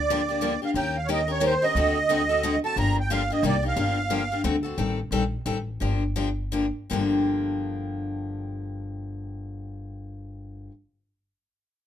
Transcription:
Already playing: D2 D5
0.10 D3 F3 A#3 D4 G4
0.29 A#3 D4 G4
0.41 D3 F3 A#3 D4 G4
0.62 A#3 D4 G4 F5
0.74 D#2 D#3 A#3 C#4 G4 A#4 G5
0.97 F5
1.06 D#3 A#3 C#4 G4 A#4 C#5
1.11 D#5
1.28 C#4 G4 A#4 C#5
1.40 D#3 A#3 C#4 G4 A#4
1.45 C5
1.62 C#4 G4 A#4 D#5
1.75 D2 D3 A3 C4 F#4 A4
2.09 D3 A3 C4 F#4 A4
2.29 C4 F#4 A4
2.43 D3 A3 C4 F#4 A4
2.64 C4 F#4 A4 A5
2.76 G1 D3 F3 A#3 D4 G4 A#5
3.00 G5
3.10 D3 F3 A#3 D4 G4 F5
3.30 A#3 D4 G4 D#5
3.43 C2 C3 G3 A#3 D#4 G4 D5
3.63 A#3 D#4 G4
3.68 F5
3.76 G1 D3 F3 A#3 D4 G4
4.10 D3 F3 A#3 D4 G4
4.32 A#3 D4 G4
4.44 D2 D3 A3 C4 F#4 A4
4.63 C4 F#4 A4
4.78 A1 D#3 G3 C4 G4 A4
5.11 A#1 D#3 G3 C4 G4 A4
5.46 A1 D#3 G3 C4 G4 A4
5.80 G1 D3 F3 A#3 D4 G4
6.16 D3 F3 A#3 D4 G4
6.52 D3 F3 A#3 D4 G4
6.90 G1 G2 D3 F3 A#3 D4 G4

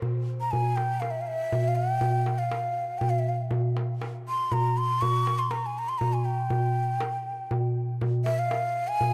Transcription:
0.02 darbuka dum
0.41 A#5
0.51 G#5, darbuka dum
0.76 G5, darbuka tek
1.00 F5, darbuka tek
1.11 E5
1.21 F5
1.27 E5
1.52 darbuka dum
1.68 F5
1.76 G5
2.01 darbuka dum
2.26 darbuka tek
2.38 F5
2.51 darbuka tek
2.98 G5, darbuka dum
3.10 F5
3.19 E5
3.29 F5
3.51 darbuka dum
3.77 darbuka tek
4.02 darbuka tek
4.29 C6
4.52 A#5, darbuka dum
4.76 C6, darbuka ka
5.01 C#6, darbuka dum
5.27 darbuka tek
5.39 C6
5.51 A#5, darbuka tek
5.66 G#5
5.79 A#5
5.89 C6
5.98 A#5, darbuka dum
6.13 G#5
6.25 G5
6.50 darbuka dum
7.00 darbuka tek
7.51 darbuka dum
8.01 darbuka dum
8.25 E5, darbuka tek
8.39 F5
8.51 darbuka tek
8.88 G#5
9.01 darbuka dum

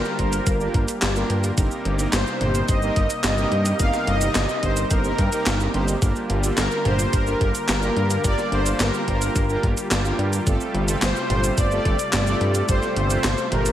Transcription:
Already playing: D3 G3 A#3 F4 G4 A#4
0.05 cabasa
0.19 G1 A#3 D4 F4 G4 A#4 C5, kick, closed hi-hat
0.33 closed hi-hat, cabasa
0.46 G1, kick, closed hi-hat, cabasa
0.60 A#3 D4 F4 G4 A#4, cabasa
0.74 G1, kick, closed hi-hat
0.88 closed hi-hat, cabasa
1.02 G1, snare, clap, closed hi-hat, cabasa
1.16 A#3 D4 F4 G4 A#4, cabasa
1.30 G2, closed hi-hat
1.44 closed hi-hat, cabasa
1.57 G1 C3 G3 A#3 C4 D#4 G4 A#4, kick, closed hi-hat, cabasa
1.71 cabasa
1.85 G1, closed hi-hat
1.99 A#3 C4 D#4 G4 A#4, closed hi-hat, cabasa
2.13 G1 C5, snare, clap, closed hi-hat, cabasa
2.27 cabasa
2.41 G1 A#3 C4 D#4 G4 C5, closed hi-hat, mid tom
2.55 closed hi-hat, cabasa
2.68 G1 D#5, kick, closed hi-hat, cabasa
2.82 A#3 C4 D#4 G4 A#4, cabasa
2.96 G1, kick, closed hi-hat
3.10 closed hi-hat, cabasa
3.24 G1 D#5, snare, clap, closed hi-hat, cabasa
3.38 A#3 C4 D#4 G4 A#4, cabasa
3.52 G2, closed hi-hat
3.66 closed hi-hat, cabasa
3.79 G1 A#3 C4 D#4 G4 A#4 F5, kick, closed hi-hat, cabasa
3.94 snare, cabasa
4.07 G1 D#5, closed hi-hat
4.21 A#3 C4 D#4 G4 A#4, closed hi-hat, cabasa
4.35 G1, snare, clap, closed hi-hat, cabasa
4.49 cabasa
4.63 G1 A#3 C4 D#4 G4 C5, kick, closed hi-hat
4.77 closed hi-hat, cabasa
4.91 G1 A#4, kick, closed hi-hat, cabasa
5.04 A#3 C4 D#4 G4 A#4, cabasa
5.18 G2, kick, closed hi-hat
5.32 A#3 C4 D#4 G4 A#4, closed hi-hat, cabasa
5.46 G1, snare, clap, closed hi-hat, cabasa
5.60 cabasa
5.74 G1 A#3 C4 D#4 G4 C5, closed hi-hat
5.88 closed hi-hat, cabasa
6.02 G1 D3 G3 A#3 D4 F4 G4 A#4, kick, closed hi-hat, cabasa
6.16 cabasa
6.30 G1, closed hi-hat
6.44 A#3 D4 F4 G4 A4, closed hi-hat, cabasa
6.57 G1 A#4, snare, clap, closed hi-hat, cabasa
6.71 cabasa
6.85 G1 A#3 D4 F4 G4 C5, closed hi-hat, mid tom
6.99 closed hi-hat, cabasa
7.13 G1 A#4, kick, closed hi-hat, cabasa
7.27 A#3 D4 F4 G4 A#4, cabasa
7.41 G1, kick, closed hi-hat
7.55 closed hi-hat, cabasa
7.69 G1 A#4, snare, clap, closed hi-hat, cabasa
7.83 A#3 D4 F4 G4 A#4, cabasa
7.96 G2, closed hi-hat
8.10 closed hi-hat, cabasa
8.24 G1 A#3 D4 F4 G4 A#4 D5, kick, closed hi-hat, cabasa
8.38 snare, cabasa
8.52 G1 C5, closed hi-hat
8.66 A#3 D4 F4 G4 A4, closed hi-hat, cabasa
8.80 G1 A#4, snare, clap, closed hi-hat, cabasa
8.94 cabasa
9.08 G1 A#3 D4 F4 G4 A#4 C5, kick, closed hi-hat
9.22 closed hi-hat, cabasa
9.35 G1, kick, closed hi-hat, cabasa
9.49 A#3 D4 F4 G4 A#4, cabasa
9.63 G1, kick, closed hi-hat
9.77 closed hi-hat, cabasa
9.91 G1, snare, clap, closed hi-hat, cabasa
10.05 A#3 D4 F4 G4 A#4, cabasa
10.19 G2, closed hi-hat
10.33 closed hi-hat, cabasa
10.47 G1 C3 A3 C4 F4 G4 A4, kick, closed hi-hat, cabasa
10.61 cabasa
10.74 G1, closed hi-hat
10.88 A3 C4 F4 G4 A4, closed hi-hat, cabasa
11.02 G1 C5, snare, clap, closed hi-hat, cabasa
11.16 cabasa
11.30 G1 A3 C4 F4 G4 C5, closed hi-hat, mid tom
11.44 closed hi-hat, cabasa
11.58 G1 D5, kick, closed hi-hat, cabasa
11.72 A3 C4 F4 G4 A4, cabasa
11.85 G1, kick, closed hi-hat
11.99 closed hi-hat, cabasa
12.13 G1 D5, snare, clap, closed hi-hat, cabasa
12.27 A3 C4 F4 G4 A4, cabasa
12.41 G2, closed hi-hat
12.55 closed hi-hat, cabasa
12.69 G1 A3 C4 F4 G4 A4 C5, kick, closed hi-hat, cabasa
12.83 snare, cabasa
12.96 G1 C5, closed hi-hat
13.10 A3 C4 F4 G4 A4, closed hi-hat, cabasa
13.24 G1, snare, clap, closed hi-hat, cabasa
13.38 cabasa
13.52 G1 A3 C4 F4 G4 A#4 C5, closed hi-hat, mid tom
13.66 closed hi-hat, cabasa

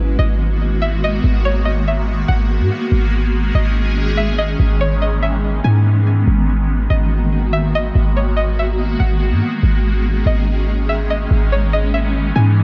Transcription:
Already playing: G#1 D#3 G#3 A#3 B3 F#4
0.19 G#1 D#5
0.82 E5
1.04 D#5
1.24 G#1
1.45 C#5
1.65 D#5
1.88 E5
2.28 G#1 F#5
2.60 G#2
2.92 G#1 D#3 C#4 G#4
3.55 G#1 D#5
4.17 E5
4.38 D#5
4.60 G#1 E3 B3
4.81 C#5
5.02 D#5
5.23 E5
5.64 G#2 G#5
6.28 G#1 A#3 F#4
6.90 G#1 D#5
7.53 E5
7.75 D#5
7.95 G#1
8.17 C#5
8.37 D#5
8.59 E5
9.00 G#1 F#5
9.32 G#2
9.63 G#1 D#3 G#3 C#4 G#4
10.26 G#1 D#5
10.89 E5
11.10 D#5
11.31 G#1 E3 B3
11.52 C#5
11.73 D#5
11.94 E5
12.36 G#2 G#5

